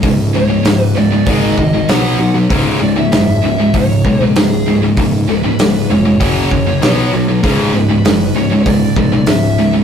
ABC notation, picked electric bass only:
X:1
M:4/4
L:1/8
Q:1/4=97
K:C#m
V:1 name="Picked electric bass" clef=bass
C,,,2 C,,, C,,, G,,, G,,, B,,, B,,, | C,,, C,,, F,,, C,,, C,,, B,,, C,,,2 | C,,,2 C,,, ^E,,, F,,, F,,, B,,, B,,, | C,,, C,,, F,,, C,,, C,,, B,,, C,,,2 |]